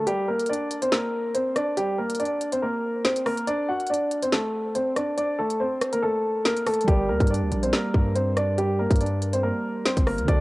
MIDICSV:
0, 0, Header, 1, 5, 480
1, 0, Start_track
1, 0, Key_signature, -2, "minor"
1, 0, Tempo, 425532
1, 78, Time_signature, 4, 2, 24, 8
1, 11737, End_track
2, 0, Start_track
2, 0, Title_t, "Grand piano"
2, 0, Program_c, 0, 0
2, 78, Note_on_c, 0, 67, 95
2, 87, Note_on_c, 0, 55, 71
2, 304, Note_off_c, 0, 67, 0
2, 309, Note_off_c, 0, 55, 0
2, 317, Note_on_c, 0, 70, 81
2, 327, Note_on_c, 0, 58, 60
2, 544, Note_off_c, 0, 70, 0
2, 549, Note_off_c, 0, 58, 0
2, 559, Note_on_c, 0, 74, 82
2, 569, Note_on_c, 0, 62, 66
2, 904, Note_off_c, 0, 74, 0
2, 909, Note_off_c, 0, 62, 0
2, 925, Note_on_c, 0, 72, 80
2, 934, Note_on_c, 0, 60, 60
2, 1032, Note_off_c, 0, 72, 0
2, 1036, Note_off_c, 0, 60, 0
2, 1038, Note_on_c, 0, 70, 83
2, 1047, Note_on_c, 0, 58, 65
2, 1489, Note_off_c, 0, 70, 0
2, 1494, Note_off_c, 0, 58, 0
2, 1517, Note_on_c, 0, 72, 74
2, 1527, Note_on_c, 0, 60, 63
2, 1744, Note_off_c, 0, 72, 0
2, 1749, Note_off_c, 0, 60, 0
2, 1758, Note_on_c, 0, 74, 86
2, 1767, Note_on_c, 0, 62, 67
2, 1984, Note_off_c, 0, 74, 0
2, 1989, Note_off_c, 0, 62, 0
2, 1999, Note_on_c, 0, 67, 85
2, 2008, Note_on_c, 0, 55, 61
2, 2225, Note_off_c, 0, 67, 0
2, 2230, Note_off_c, 0, 55, 0
2, 2237, Note_on_c, 0, 70, 73
2, 2246, Note_on_c, 0, 58, 63
2, 2464, Note_off_c, 0, 70, 0
2, 2469, Note_off_c, 0, 58, 0
2, 2478, Note_on_c, 0, 74, 78
2, 2488, Note_on_c, 0, 62, 62
2, 2823, Note_off_c, 0, 74, 0
2, 2828, Note_off_c, 0, 62, 0
2, 2846, Note_on_c, 0, 72, 78
2, 2855, Note_on_c, 0, 60, 60
2, 2952, Note_off_c, 0, 72, 0
2, 2957, Note_off_c, 0, 60, 0
2, 2959, Note_on_c, 0, 70, 78
2, 2968, Note_on_c, 0, 58, 68
2, 3410, Note_off_c, 0, 70, 0
2, 3415, Note_off_c, 0, 58, 0
2, 3437, Note_on_c, 0, 72, 79
2, 3447, Note_on_c, 0, 60, 60
2, 3664, Note_off_c, 0, 72, 0
2, 3669, Note_off_c, 0, 60, 0
2, 3678, Note_on_c, 0, 70, 86
2, 3686, Note_on_c, 0, 58, 61
2, 3904, Note_off_c, 0, 70, 0
2, 3909, Note_off_c, 0, 58, 0
2, 3917, Note_on_c, 0, 74, 99
2, 3927, Note_on_c, 0, 62, 76
2, 4144, Note_off_c, 0, 74, 0
2, 4149, Note_off_c, 0, 62, 0
2, 4158, Note_on_c, 0, 78, 79
2, 4167, Note_on_c, 0, 66, 57
2, 4385, Note_off_c, 0, 78, 0
2, 4389, Note_off_c, 0, 66, 0
2, 4399, Note_on_c, 0, 74, 81
2, 4409, Note_on_c, 0, 62, 63
2, 4744, Note_off_c, 0, 74, 0
2, 4749, Note_off_c, 0, 62, 0
2, 4766, Note_on_c, 0, 72, 78
2, 4775, Note_on_c, 0, 60, 63
2, 4872, Note_off_c, 0, 72, 0
2, 4877, Note_off_c, 0, 60, 0
2, 4878, Note_on_c, 0, 69, 74
2, 4887, Note_on_c, 0, 57, 68
2, 5329, Note_off_c, 0, 69, 0
2, 5334, Note_off_c, 0, 57, 0
2, 5357, Note_on_c, 0, 72, 77
2, 5365, Note_on_c, 0, 60, 59
2, 5584, Note_off_c, 0, 72, 0
2, 5588, Note_off_c, 0, 60, 0
2, 5595, Note_on_c, 0, 74, 75
2, 5604, Note_on_c, 0, 62, 61
2, 5821, Note_off_c, 0, 74, 0
2, 5828, Note_off_c, 0, 62, 0
2, 5838, Note_on_c, 0, 74, 91
2, 5847, Note_on_c, 0, 62, 59
2, 6064, Note_off_c, 0, 74, 0
2, 6069, Note_off_c, 0, 62, 0
2, 6076, Note_on_c, 0, 69, 84
2, 6085, Note_on_c, 0, 57, 67
2, 6303, Note_off_c, 0, 69, 0
2, 6308, Note_off_c, 0, 57, 0
2, 6317, Note_on_c, 0, 72, 79
2, 6327, Note_on_c, 0, 60, 61
2, 6663, Note_off_c, 0, 72, 0
2, 6668, Note_off_c, 0, 60, 0
2, 6686, Note_on_c, 0, 70, 79
2, 6696, Note_on_c, 0, 58, 59
2, 6792, Note_off_c, 0, 70, 0
2, 6796, Note_on_c, 0, 69, 87
2, 6797, Note_off_c, 0, 58, 0
2, 6805, Note_on_c, 0, 57, 64
2, 7248, Note_off_c, 0, 69, 0
2, 7253, Note_off_c, 0, 57, 0
2, 7278, Note_on_c, 0, 70, 81
2, 7286, Note_on_c, 0, 58, 60
2, 7504, Note_off_c, 0, 70, 0
2, 7509, Note_off_c, 0, 58, 0
2, 7519, Note_on_c, 0, 69, 84
2, 7528, Note_on_c, 0, 57, 59
2, 7745, Note_off_c, 0, 69, 0
2, 7750, Note_off_c, 0, 57, 0
2, 7759, Note_on_c, 0, 67, 90
2, 7769, Note_on_c, 0, 55, 76
2, 7985, Note_off_c, 0, 67, 0
2, 7990, Note_off_c, 0, 55, 0
2, 7998, Note_on_c, 0, 70, 81
2, 8007, Note_on_c, 0, 58, 61
2, 8224, Note_off_c, 0, 70, 0
2, 8229, Note_off_c, 0, 58, 0
2, 8240, Note_on_c, 0, 74, 81
2, 8249, Note_on_c, 0, 62, 65
2, 8584, Note_off_c, 0, 74, 0
2, 8589, Note_off_c, 0, 62, 0
2, 8604, Note_on_c, 0, 72, 80
2, 8613, Note_on_c, 0, 60, 61
2, 8711, Note_off_c, 0, 72, 0
2, 8716, Note_off_c, 0, 60, 0
2, 8718, Note_on_c, 0, 70, 84
2, 8727, Note_on_c, 0, 58, 66
2, 9170, Note_off_c, 0, 70, 0
2, 9174, Note_off_c, 0, 58, 0
2, 9196, Note_on_c, 0, 72, 77
2, 9205, Note_on_c, 0, 60, 61
2, 9424, Note_off_c, 0, 72, 0
2, 9428, Note_off_c, 0, 60, 0
2, 9437, Note_on_c, 0, 74, 86
2, 9446, Note_on_c, 0, 62, 66
2, 9664, Note_off_c, 0, 74, 0
2, 9669, Note_off_c, 0, 62, 0
2, 9678, Note_on_c, 0, 67, 82
2, 9687, Note_on_c, 0, 55, 62
2, 9904, Note_off_c, 0, 67, 0
2, 9909, Note_off_c, 0, 55, 0
2, 9915, Note_on_c, 0, 70, 74
2, 9925, Note_on_c, 0, 58, 66
2, 10143, Note_off_c, 0, 70, 0
2, 10148, Note_off_c, 0, 58, 0
2, 10157, Note_on_c, 0, 74, 75
2, 10166, Note_on_c, 0, 62, 62
2, 10503, Note_off_c, 0, 74, 0
2, 10507, Note_off_c, 0, 62, 0
2, 10525, Note_on_c, 0, 72, 80
2, 10534, Note_on_c, 0, 60, 60
2, 10632, Note_off_c, 0, 72, 0
2, 10636, Note_off_c, 0, 60, 0
2, 10637, Note_on_c, 0, 70, 84
2, 10646, Note_on_c, 0, 58, 69
2, 11089, Note_off_c, 0, 70, 0
2, 11094, Note_off_c, 0, 58, 0
2, 11116, Note_on_c, 0, 72, 78
2, 11125, Note_on_c, 0, 60, 60
2, 11343, Note_off_c, 0, 72, 0
2, 11348, Note_off_c, 0, 60, 0
2, 11356, Note_on_c, 0, 70, 86
2, 11365, Note_on_c, 0, 58, 62
2, 11584, Note_off_c, 0, 70, 0
2, 11588, Note_off_c, 0, 58, 0
2, 11596, Note_on_c, 0, 74, 101
2, 11605, Note_on_c, 0, 62, 77
2, 11737, Note_off_c, 0, 62, 0
2, 11737, Note_off_c, 0, 74, 0
2, 11737, End_track
3, 0, Start_track
3, 0, Title_t, "Tine electric piano"
3, 0, Program_c, 1, 4
3, 0, Control_c, 1, 64, 127
3, 94, Control_c, 1, 64, 0
3, 7719, Note_on_c, 1, 55, 70
3, 7748, Note_on_c, 1, 67, 58
3, 7775, Note_on_c, 1, 70, 66
3, 7803, Note_on_c, 1, 74, 73
3, 7946, Control_c, 1, 64, 127
3, 11534, Note_off_c, 1, 55, 0
3, 11548, Note_off_c, 1, 67, 0
3, 11555, Note_on_c, 1, 50, 72
3, 11562, Note_off_c, 1, 70, 0
3, 11575, Note_off_c, 1, 74, 0
3, 11583, Note_on_c, 1, 62, 61
3, 11611, Note_on_c, 1, 66, 65
3, 11613, Control_c, 1, 64, 0
3, 11638, Note_on_c, 1, 69, 77
3, 11737, Note_off_c, 1, 50, 0
3, 11737, Note_off_c, 1, 62, 0
3, 11737, Note_off_c, 1, 66, 0
3, 11737, Note_off_c, 1, 69, 0
3, 11737, End_track
4, 0, Start_track
4, 0, Title_t, "808-style bass"
4, 0, Program_c, 2, 38
4, 7758, Note_on_c, 2, 31, 106
4, 7998, Note_on_c, 2, 38, 97
4, 8015, Note_off_c, 2, 31, 0
4, 8119, Note_off_c, 2, 38, 0
4, 8125, Note_on_c, 2, 43, 107
4, 8365, Note_on_c, 2, 38, 101
4, 8382, Note_off_c, 2, 43, 0
4, 8473, Note_off_c, 2, 38, 0
4, 8478, Note_on_c, 2, 34, 104
4, 8708, Note_off_c, 2, 34, 0
4, 8959, Note_on_c, 2, 43, 106
4, 10002, Note_off_c, 2, 43, 0
4, 10045, Note_on_c, 2, 43, 105
4, 10736, Note_off_c, 2, 43, 0
4, 11246, Note_on_c, 2, 31, 106
4, 11486, Note_on_c, 2, 38, 102
4, 11503, Note_off_c, 2, 31, 0
4, 11593, Note_off_c, 2, 38, 0
4, 11598, Note_on_c, 2, 38, 109
4, 11737, Note_off_c, 2, 38, 0
4, 11737, End_track
5, 0, Start_track
5, 0, Title_t, "Drums"
5, 78, Note_on_c, 9, 42, 73
5, 191, Note_off_c, 9, 42, 0
5, 445, Note_on_c, 9, 42, 51
5, 520, Note_off_c, 9, 42, 0
5, 520, Note_on_c, 9, 42, 68
5, 601, Note_off_c, 9, 42, 0
5, 601, Note_on_c, 9, 42, 87
5, 713, Note_off_c, 9, 42, 0
5, 798, Note_on_c, 9, 42, 77
5, 911, Note_off_c, 9, 42, 0
5, 925, Note_on_c, 9, 42, 85
5, 1038, Note_off_c, 9, 42, 0
5, 1038, Note_on_c, 9, 38, 110
5, 1150, Note_off_c, 9, 38, 0
5, 1518, Note_on_c, 9, 42, 85
5, 1631, Note_off_c, 9, 42, 0
5, 1758, Note_on_c, 9, 37, 91
5, 1759, Note_on_c, 9, 42, 79
5, 1871, Note_off_c, 9, 37, 0
5, 1871, Note_off_c, 9, 42, 0
5, 1998, Note_on_c, 9, 42, 74
5, 2111, Note_off_c, 9, 42, 0
5, 2366, Note_on_c, 9, 42, 83
5, 2422, Note_off_c, 9, 42, 0
5, 2422, Note_on_c, 9, 42, 68
5, 2479, Note_off_c, 9, 42, 0
5, 2479, Note_on_c, 9, 42, 62
5, 2542, Note_off_c, 9, 42, 0
5, 2542, Note_on_c, 9, 42, 50
5, 2655, Note_off_c, 9, 42, 0
5, 2719, Note_on_c, 9, 42, 81
5, 2831, Note_off_c, 9, 42, 0
5, 2846, Note_on_c, 9, 42, 81
5, 2959, Note_off_c, 9, 42, 0
5, 3438, Note_on_c, 9, 38, 118
5, 3438, Note_on_c, 9, 42, 90
5, 3550, Note_off_c, 9, 38, 0
5, 3551, Note_off_c, 9, 42, 0
5, 3566, Note_on_c, 9, 42, 82
5, 3678, Note_off_c, 9, 42, 0
5, 3678, Note_on_c, 9, 37, 91
5, 3678, Note_on_c, 9, 46, 56
5, 3791, Note_off_c, 9, 37, 0
5, 3791, Note_off_c, 9, 46, 0
5, 3806, Note_on_c, 9, 42, 69
5, 3919, Note_off_c, 9, 42, 0
5, 3919, Note_on_c, 9, 42, 73
5, 4031, Note_off_c, 9, 42, 0
5, 4285, Note_on_c, 9, 42, 50
5, 4361, Note_off_c, 9, 42, 0
5, 4361, Note_on_c, 9, 42, 70
5, 4441, Note_off_c, 9, 42, 0
5, 4441, Note_on_c, 9, 42, 88
5, 4554, Note_off_c, 9, 42, 0
5, 4638, Note_on_c, 9, 42, 81
5, 4751, Note_off_c, 9, 42, 0
5, 4765, Note_on_c, 9, 42, 83
5, 4877, Note_on_c, 9, 38, 114
5, 4878, Note_off_c, 9, 42, 0
5, 4990, Note_off_c, 9, 38, 0
5, 5358, Note_on_c, 9, 42, 87
5, 5471, Note_off_c, 9, 42, 0
5, 5598, Note_on_c, 9, 37, 92
5, 5598, Note_on_c, 9, 42, 75
5, 5711, Note_off_c, 9, 37, 0
5, 5711, Note_off_c, 9, 42, 0
5, 5838, Note_on_c, 9, 42, 76
5, 5951, Note_off_c, 9, 42, 0
5, 6206, Note_on_c, 9, 42, 81
5, 6318, Note_off_c, 9, 42, 0
5, 6559, Note_on_c, 9, 37, 98
5, 6559, Note_on_c, 9, 42, 81
5, 6672, Note_off_c, 9, 37, 0
5, 6672, Note_off_c, 9, 42, 0
5, 6686, Note_on_c, 9, 42, 83
5, 6799, Note_off_c, 9, 42, 0
5, 7278, Note_on_c, 9, 38, 118
5, 7279, Note_on_c, 9, 42, 89
5, 7391, Note_off_c, 9, 38, 0
5, 7392, Note_off_c, 9, 42, 0
5, 7406, Note_on_c, 9, 42, 79
5, 7518, Note_off_c, 9, 42, 0
5, 7518, Note_on_c, 9, 37, 89
5, 7518, Note_on_c, 9, 42, 60
5, 7518, Note_on_c, 9, 46, 55
5, 7599, Note_off_c, 9, 42, 0
5, 7599, Note_on_c, 9, 42, 62
5, 7631, Note_off_c, 9, 37, 0
5, 7631, Note_off_c, 9, 46, 0
5, 7679, Note_off_c, 9, 42, 0
5, 7679, Note_on_c, 9, 42, 62
5, 7758, Note_on_c, 9, 36, 127
5, 7759, Note_off_c, 9, 42, 0
5, 7759, Note_on_c, 9, 42, 74
5, 7871, Note_off_c, 9, 36, 0
5, 7872, Note_off_c, 9, 42, 0
5, 8125, Note_on_c, 9, 36, 94
5, 8126, Note_on_c, 9, 42, 50
5, 8201, Note_off_c, 9, 42, 0
5, 8201, Note_on_c, 9, 42, 68
5, 8238, Note_off_c, 9, 36, 0
5, 8281, Note_off_c, 9, 42, 0
5, 8281, Note_on_c, 9, 42, 88
5, 8394, Note_off_c, 9, 42, 0
5, 8479, Note_on_c, 9, 42, 79
5, 8591, Note_off_c, 9, 42, 0
5, 8606, Note_on_c, 9, 42, 86
5, 8718, Note_on_c, 9, 38, 109
5, 8719, Note_off_c, 9, 42, 0
5, 8831, Note_off_c, 9, 38, 0
5, 8959, Note_on_c, 9, 36, 97
5, 9071, Note_off_c, 9, 36, 0
5, 9199, Note_on_c, 9, 42, 86
5, 9312, Note_off_c, 9, 42, 0
5, 9439, Note_on_c, 9, 37, 93
5, 9439, Note_on_c, 9, 42, 75
5, 9552, Note_off_c, 9, 37, 0
5, 9552, Note_off_c, 9, 42, 0
5, 9679, Note_on_c, 9, 42, 74
5, 9791, Note_off_c, 9, 42, 0
5, 10045, Note_on_c, 9, 36, 101
5, 10046, Note_on_c, 9, 42, 82
5, 10102, Note_off_c, 9, 42, 0
5, 10102, Note_on_c, 9, 42, 72
5, 10158, Note_off_c, 9, 36, 0
5, 10158, Note_off_c, 9, 42, 0
5, 10158, Note_on_c, 9, 42, 62
5, 10223, Note_off_c, 9, 42, 0
5, 10223, Note_on_c, 9, 42, 49
5, 10336, Note_off_c, 9, 42, 0
5, 10399, Note_on_c, 9, 42, 79
5, 10511, Note_off_c, 9, 42, 0
5, 10526, Note_on_c, 9, 42, 85
5, 10639, Note_off_c, 9, 42, 0
5, 11118, Note_on_c, 9, 38, 119
5, 11118, Note_on_c, 9, 42, 88
5, 11230, Note_off_c, 9, 38, 0
5, 11231, Note_off_c, 9, 42, 0
5, 11245, Note_on_c, 9, 42, 83
5, 11246, Note_on_c, 9, 36, 88
5, 11358, Note_off_c, 9, 42, 0
5, 11359, Note_off_c, 9, 36, 0
5, 11359, Note_on_c, 9, 37, 92
5, 11359, Note_on_c, 9, 46, 54
5, 11472, Note_off_c, 9, 37, 0
5, 11472, Note_off_c, 9, 46, 0
5, 11486, Note_on_c, 9, 42, 67
5, 11598, Note_on_c, 9, 36, 124
5, 11599, Note_off_c, 9, 42, 0
5, 11599, Note_on_c, 9, 42, 75
5, 11711, Note_off_c, 9, 36, 0
5, 11711, Note_off_c, 9, 42, 0
5, 11737, End_track
0, 0, End_of_file